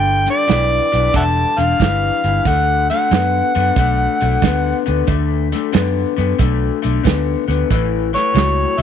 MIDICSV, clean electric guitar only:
0, 0, Header, 1, 2, 480
1, 0, Start_track
1, 0, Key_signature, 2, "major"
1, 0, Tempo, 655738
1, 1798, Time_signature, 4, 2, 24, 8
1, 6456, End_track
2, 0, Start_track
2, 0, Title_t, "Clean electric guitar"
2, 0, Program_c, 0, 27
2, 0, Note_on_c, 0, 43, 75
2, 0, Note_on_c, 0, 50, 82
2, 165, Note_off_c, 0, 50, 0
2, 166, Note_off_c, 0, 43, 0
2, 192, Note_on_c, 0, 43, 65
2, 200, Note_on_c, 0, 50, 71
2, 337, Note_off_c, 0, 43, 0
2, 340, Note_off_c, 0, 50, 0
2, 345, Note_on_c, 0, 43, 78
2, 349, Note_on_c, 0, 52, 92
2, 641, Note_off_c, 0, 43, 0
2, 643, Note_off_c, 0, 52, 0
2, 675, Note_on_c, 0, 43, 70
2, 676, Note_on_c, 0, 52, 82
2, 818, Note_off_c, 0, 43, 0
2, 819, Note_off_c, 0, 52, 0
2, 827, Note_on_c, 0, 43, 77
2, 835, Note_on_c, 0, 50, 82
2, 1122, Note_off_c, 0, 43, 0
2, 1126, Note_off_c, 0, 50, 0
2, 1157, Note_on_c, 0, 43, 64
2, 1162, Note_on_c, 0, 50, 80
2, 1300, Note_off_c, 0, 43, 0
2, 1303, Note_off_c, 0, 50, 0
2, 1318, Note_on_c, 0, 43, 71
2, 1322, Note_on_c, 0, 52, 93
2, 1608, Note_off_c, 0, 43, 0
2, 1611, Note_off_c, 0, 52, 0
2, 1640, Note_on_c, 0, 43, 69
2, 1645, Note_on_c, 0, 52, 73
2, 1782, Note_off_c, 0, 43, 0
2, 1785, Note_off_c, 0, 52, 0
2, 1807, Note_on_c, 0, 50, 76
2, 1811, Note_on_c, 0, 57, 82
2, 2093, Note_off_c, 0, 50, 0
2, 2095, Note_off_c, 0, 57, 0
2, 2129, Note_on_c, 0, 57, 74
2, 2130, Note_on_c, 0, 50, 63
2, 2267, Note_off_c, 0, 50, 0
2, 2267, Note_off_c, 0, 57, 0
2, 2277, Note_on_c, 0, 50, 75
2, 2283, Note_on_c, 0, 59, 81
2, 2569, Note_off_c, 0, 50, 0
2, 2572, Note_off_c, 0, 59, 0
2, 2598, Note_on_c, 0, 50, 68
2, 2598, Note_on_c, 0, 59, 77
2, 2741, Note_off_c, 0, 59, 0
2, 2742, Note_off_c, 0, 50, 0
2, 2764, Note_on_c, 0, 50, 76
2, 2768, Note_on_c, 0, 57, 82
2, 3052, Note_off_c, 0, 50, 0
2, 3054, Note_off_c, 0, 57, 0
2, 3084, Note_on_c, 0, 50, 74
2, 3089, Note_on_c, 0, 57, 75
2, 3225, Note_off_c, 0, 50, 0
2, 3228, Note_off_c, 0, 57, 0
2, 3243, Note_on_c, 0, 50, 70
2, 3249, Note_on_c, 0, 59, 85
2, 3532, Note_off_c, 0, 50, 0
2, 3535, Note_off_c, 0, 59, 0
2, 3555, Note_on_c, 0, 50, 63
2, 3557, Note_on_c, 0, 59, 71
2, 3701, Note_off_c, 0, 50, 0
2, 3701, Note_off_c, 0, 59, 0
2, 3711, Note_on_c, 0, 50, 69
2, 3716, Note_on_c, 0, 57, 85
2, 4005, Note_off_c, 0, 50, 0
2, 4008, Note_off_c, 0, 57, 0
2, 4043, Note_on_c, 0, 50, 66
2, 4043, Note_on_c, 0, 57, 69
2, 4182, Note_off_c, 0, 50, 0
2, 4184, Note_off_c, 0, 57, 0
2, 4191, Note_on_c, 0, 50, 79
2, 4195, Note_on_c, 0, 59, 83
2, 4485, Note_off_c, 0, 50, 0
2, 4487, Note_off_c, 0, 59, 0
2, 4513, Note_on_c, 0, 50, 69
2, 4521, Note_on_c, 0, 59, 83
2, 4659, Note_off_c, 0, 50, 0
2, 4663, Note_off_c, 0, 59, 0
2, 4674, Note_on_c, 0, 50, 80
2, 4677, Note_on_c, 0, 57, 93
2, 4967, Note_off_c, 0, 50, 0
2, 4968, Note_off_c, 0, 57, 0
2, 4994, Note_on_c, 0, 50, 77
2, 4996, Note_on_c, 0, 57, 77
2, 5139, Note_off_c, 0, 50, 0
2, 5140, Note_off_c, 0, 57, 0
2, 5149, Note_on_c, 0, 50, 79
2, 5154, Note_on_c, 0, 59, 77
2, 5444, Note_off_c, 0, 50, 0
2, 5446, Note_off_c, 0, 59, 0
2, 5473, Note_on_c, 0, 50, 66
2, 5477, Note_on_c, 0, 59, 68
2, 5618, Note_off_c, 0, 50, 0
2, 5620, Note_off_c, 0, 59, 0
2, 5639, Note_on_c, 0, 45, 82
2, 5642, Note_on_c, 0, 52, 87
2, 5928, Note_off_c, 0, 45, 0
2, 5929, Note_off_c, 0, 52, 0
2, 5952, Note_on_c, 0, 45, 62
2, 5956, Note_on_c, 0, 52, 61
2, 6097, Note_off_c, 0, 45, 0
2, 6099, Note_off_c, 0, 52, 0
2, 6105, Note_on_c, 0, 45, 76
2, 6114, Note_on_c, 0, 54, 86
2, 6400, Note_off_c, 0, 45, 0
2, 6404, Note_off_c, 0, 54, 0
2, 6427, Note_on_c, 0, 45, 72
2, 6430, Note_on_c, 0, 54, 84
2, 6456, Note_off_c, 0, 45, 0
2, 6456, Note_off_c, 0, 54, 0
2, 6456, End_track
0, 0, End_of_file